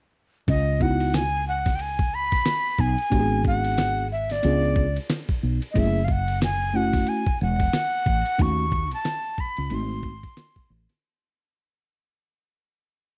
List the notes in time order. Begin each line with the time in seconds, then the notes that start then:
0.48 C#2 D#5, kick, ride
0.80 B3 D#4 E4 F#4 F#5, kick
1.00 ride
1.14 G#5, snare, hi-hat pedal, ride
1.48 F#5
1.65 kick, snare, ride
1.75 G5, ride
1.81 G#5
1.99 kick
2.14 B5
2.32 kick, ride
2.46 snare, hi-hat pedal, ride
2.79 B1 G#5, kick
2.98 ride
3.10 G#1 B3 D4 F#4 G4, kick, ride
3.19 G#4
3.44 F#5, kick
3.64 ride
3.77 snare, hi-hat pedal, ride
4.12 E5
4.29 D5, snare, ride
4.43 C#2 B3 D4 F4 G#4, ride
4.76 kick
4.96 ride
5.10 snare, hi-hat pedal, ride
5.29 kick
5.43 B1
5.62 ride
5.71 A3 C#4 D#5
5.75 F#1 E4 G#4 E5, kick, ride
6.04 F5, kick
6.11 F#5
6.28 ride
6.41 G#5, snare, hi-hat pedal, ride
6.73 A3 C#4 E4 F#4 F#5
6.93 kick, snare, ride
7.07 G#5, ride
7.26 kick
7.41 E1 F#5
7.59 kick, ride
7.73 snare, hi-hat pedal, ride
8.06 A1, kick
8.26 ride
8.38 D#2 A3 C#4 D#4 F#4 C#6, kick, ride
8.72 kick
8.91 A5, ride
9.04 snare, hi-hat pedal, ride
9.38 B5, kick
9.57 C#2, ride
9.70 G#1 A3 C4 D#4 F#4, ride
9.74 C6
10.03 kick
10.23 kick, ride
10.37 snare, hi-hat pedal, ride
10.56 kick
10.70 A1
10.89 snare, ride